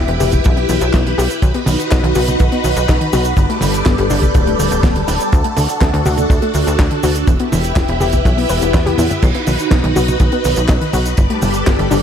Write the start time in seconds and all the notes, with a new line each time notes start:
Already playing: E4 G4 B4
0.08 E1 E3, closed hi-hat
0.20 E1 G4, open hi-hat, high tom, cabasa
0.32 kick, closed hi-hat, high tom, cabasa
0.44 B1 E3, kick, closed hi-hat, cabasa
0.57 B3, closed hi-hat
0.69 B1 E3, open hi-hat, cabasa
0.81 B1, closed hi-hat, cabasa
0.93 B1 E4, kick, snare, clap, closed hi-hat, cabasa
1.06 E3, snare, closed hi-hat
1.18 B1 G4, open hi-hat, cabasa
1.30 closed hi-hat, cabasa
1.42 B1 D#3 D#4 F#4, kick, closed hi-hat, cabasa
1.54 B3, closed hi-hat
1.66 B1 D#3, open hi-hat, high tom, cabasa
1.80 closed hi-hat, cabasa
1.91 B1 D#4, kick, snare, clap, closed hi-hat, cabasa
2.03 B1 D#3, closed hi-hat
2.15 B1 F#4, open hi-hat, high tom, cabasa
2.27 closed hi-hat, high tom, cabasa
2.40 B1 D#3, kick, closed hi-hat, cabasa
2.52 B3, closed hi-hat
2.64 B1 D#3, open hi-hat, cabasa
2.76 B1, closed hi-hat, cabasa
2.89 B1 D#4, kick, snare, clap, closed hi-hat, cabasa
3.01 D#3, closed hi-hat
3.13 B1 F#4, open hi-hat, high tom, cabasa
3.25 closed hi-hat, cabasa
3.37 G1 D3 G3 G4 A4 D5, kick, closed hi-hat, cabasa
3.50 A3, closed hi-hat
3.61 G1 D3, open hi-hat, high tom, cabasa
3.74 closed hi-hat, cabasa
3.86 G1 B3, kick, snare, clap, closed hi-hat, cabasa
3.98 G1 D3, closed hi-hat
4.10 G1 D4, open hi-hat, high tom, cabasa
4.22 kick, closed hi-hat, high tom, cabasa
4.34 D1 D3, kick, closed hi-hat, cabasa
4.47 A3, closed hi-hat
4.59 D1 D3, open hi-hat, cabasa
4.71 D1, closed hi-hat, cabasa
4.83 D1 B3, kick, snare, clap, closed hi-hat, cabasa
4.96 D3, closed hi-hat
5.08 D1 D4, open hi-hat, cabasa
5.20 closed hi-hat, cabasa
5.32 D2 D3 D4 F#4, kick, closed hi-hat, cabasa
5.44 A3, closed hi-hat
5.57 D2 D3, open hi-hat, high tom, cabasa
5.69 closed hi-hat, cabasa
5.81 D2 D4, kick, snare, clap, closed hi-hat, cabasa
5.93 D2 D3, closed hi-hat
6.06 D2 F#4, open hi-hat, high tom, cabasa
6.18 closed hi-hat, high tom, cabasa
6.30 D2 D3, kick, closed hi-hat, cabasa
6.42 A3, closed hi-hat
6.54 D2 D3, open hi-hat, cabasa
6.67 D2, closed hi-hat, cabasa
6.79 D2 D4, kick, snare, clap, closed hi-hat, cabasa
6.91 D3, closed hi-hat
7.03 D2 F#4, open hi-hat, high tom, cabasa
7.15 closed hi-hat, cabasa
7.27 E1 E3 E4 G4 B4, kick, closed hi-hat, cabasa
7.40 B3, closed hi-hat
7.52 E1 E3, open hi-hat, high tom, cabasa
7.64 closed hi-hat, cabasa
7.76 E1 E4, kick, snare, clap, closed hi-hat, cabasa
7.88 E1 E3, closed hi-hat
8.00 E1 G4, open hi-hat, high tom, cabasa
8.12 kick, closed hi-hat, high tom, cabasa
8.25 B1 E3, kick, closed hi-hat, swell, cabasa
8.37 B3, open hi-hat
8.49 E1 B4, open hi-hat, cabasa
8.62 E1 B3, closed hi-hat, cabasa
8.74 E2 B4, kick, snare, clap, closed hi-hat, cabasa
8.86 G4, snare, closed hi-hat, high tom
8.98 E2 E4, open hi-hat, mid tom, cabasa
9.10 E4, closed hi-hat, mid tom, cabasa
9.22 B1 D#3 D#4 F#4, kick, closed hi-hat, crash, cabasa
9.35 B3, closed hi-hat
9.47 B1 D#3, open hi-hat, high tom, cabasa
9.59 closed hi-hat, cabasa
9.71 B1 D#4, kick, snare, clap, closed hi-hat, cabasa
9.84 B1 D#3, closed hi-hat
9.96 B1 F#4, open hi-hat, high tom, cabasa
10.08 closed hi-hat, high tom, cabasa
10.20 B1 D#3, kick, closed hi-hat, cabasa
10.32 B3, closed hi-hat
10.44 B1 D#3, open hi-hat, cabasa
10.56 B1, closed hi-hat, cabasa
10.68 B1 D#4, kick, snare, clap, closed hi-hat, cabasa
10.81 D#3, closed hi-hat
10.93 B1 F#4, open hi-hat, high tom, cabasa
11.05 closed hi-hat, cabasa
11.17 G1 D3 G3 G4 A4 D5, kick, closed hi-hat, cabasa
11.30 A3, closed hi-hat
11.42 G1 D3, open hi-hat, high tom, cabasa
11.54 closed hi-hat, cabasa
11.66 G1 B3, kick, snare, clap, closed hi-hat, cabasa
11.79 G1 D3, closed hi-hat
11.91 G1 D4, open hi-hat, high tom, cabasa